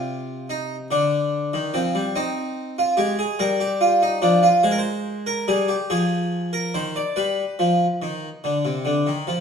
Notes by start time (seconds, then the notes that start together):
Already playing: C3 F4
0.50 D#4
0.91 D3 D4
1.54 D#3
1.74 F3 C4
1.95 G3
2.15 C4 D#4
2.78 F4
2.97 G#3 G4
3.19 G#4
3.39 G3 A#4
3.60 G4
3.81 F4
4.02 D#4
4.22 F3 D4
4.43 F4
4.63 G#3 C5
4.71 A#4
4.79 C5
5.26 A#4
5.48 G3 G#4
5.68 G4
5.90 F3 G#4
6.53 A#4
6.74 D#3 C5
6.96 D5
7.16 G3 B4
7.59 F3
8.02 D#3
8.44 D3
8.65 C3
8.85 D3
9.07 D#3
9.27 F3